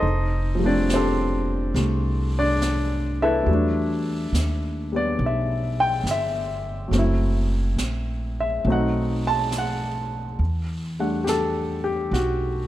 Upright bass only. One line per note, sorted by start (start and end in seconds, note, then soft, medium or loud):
0.02 1.71 F1 medium
1.74 3.43 C2 medium
3.46 4.29 E2 medium
4.32 5.15 D#2 medium
5.19 6.01 B1 medium
6.04 6.87 G1 medium
6.91 7.74 F#1 medium
7.76 8.60 A#1 medium
8.65 10.35 B1 medium
10.39 12.08 E2 medium
12.11 12.67 B1 medium